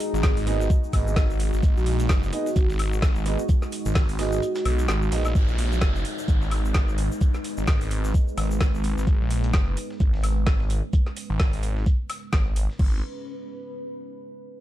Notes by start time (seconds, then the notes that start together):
Already playing: G#3 D#4 F#4 G#4
0.00 open hi-hat, shaker
0.14 G#1, shaker
0.23 kick, snare, shaker
0.37 G#1, snare, open hi-hat, shaker
0.47 B3 D#4 G#4 D#5, open hi-hat, shaker
0.60 snare, shaker
0.70 kick, shaker
0.84 shaker
0.93 G#1 B3 D#4 G#4 D#5, kick, snare, open hi-hat, high woodblock, shaker
1.07 B3 D#4 G#4 D#5, shaker
1.16 kick, snare, shaker
1.30 G#1, shaker
1.40 open hi-hat, shaker
1.53 G#1, snare, shaker
1.63 G#1, kick, shaker
1.76 A#1 F#4, shaker
1.86 F#4, open hi-hat, shaker
1.99 closed hi-hat, shaker
2.09 F#1, kick, snare, shaker
2.23 shaker
2.33 B3 D#4 G#4 D#5, open hi-hat, shaker
2.46 F#4, snare, shaker
2.56 G#1, kick, shaker
2.70 snare, shaker
2.79 snare, open hi-hat, high woodblock, shaker
2.93 shaker
3.02 G#1, kick, snare, shaker
3.15 snare, shaker
3.26 B3 D#4 G#4 D#5, open hi-hat, shaker
3.39 shaker
3.49 kick, shaker
3.62 snare, shaker
3.72 open hi-hat, shaker
3.86 G#1, shaker
3.95 kick, snare, shaker
4.09 G#1, snare, open hi-hat, shaker
4.19 B3 D#4 F#4 G#4 D#5, snare, open hi-hat, shaker
4.32 shaker
4.42 shaker
4.55 snare, shaker
4.65 B1, open hi-hat, high woodblock
4.79 shaker
4.88 G#1, snare, shaker
5.02 shaker
5.12 A#1 B3 D#4 G#4 D#5, snare, open hi-hat, shaker
5.25 snare, high woodblock, shaker
5.35 G#1 G#3 D#4 B4, kick, downlifter, shaker
5.48 A#1, shaker
5.58 open hi-hat, shaker
5.72 closed hi-hat, shaker
5.81 F#1, kick, snare, shaker
5.96 shaker
6.05 open hi-hat, shaker
6.18 snare, shaker
6.28 G#1, kick, shaker
6.42 snare, shaker
6.51 snare, open hi-hat, high woodblock, shaker
6.65 shaker
6.74 G#1, kick, snare, shaker
6.88 snare, shaker
6.98 open hi-hat, shaker
7.12 shaker
7.21 kick, shaker
7.34 snare, shaker
7.44 open hi-hat, shaker
7.57 G#1, shaker
7.67 kick, snare, shaker
7.81 G#1, snare, open hi-hat, shaker
7.91 open hi-hat, shaker
8.04 snare, shaker
8.14 kick, shaker
8.28 shaker
8.37 G#1, snare, open hi-hat, high woodblock, shaker
8.51 shaker
8.61 kick, snare, shaker
8.74 G#1, shaker
8.84 open hi-hat, shaker
8.97 G#1, snare, shaker
9.07 G#1 C#4, kick, shaker
9.21 A#1
9.31 open hi-hat, shaker
9.44 closed hi-hat
9.54 F#1, kick, snare, shaker
9.77 open hi-hat, shaker
9.90 snare
10.00 G#1, kick, shaker
10.14 snare
10.23 snare, open hi-hat, high woodblock, shaker
10.47 G#1, kick, snare, shaker
10.60 snare
10.70 open hi-hat, shaker
10.93 kick, shaker
11.07 snare
11.17 open hi-hat, shaker
11.30 G#1
11.40 kick, snare, shaker
11.53 G#1, snare, open hi-hat
11.63 open hi-hat, shaker
11.77 snare
11.86 kick, shaker
12.10 snare, open hi-hat, high woodblock, shaker
12.33 G#1, kick, snare, shaker
12.56 G#1, open hi-hat, shaker
12.70 snare
12.79 G#1, kick, crash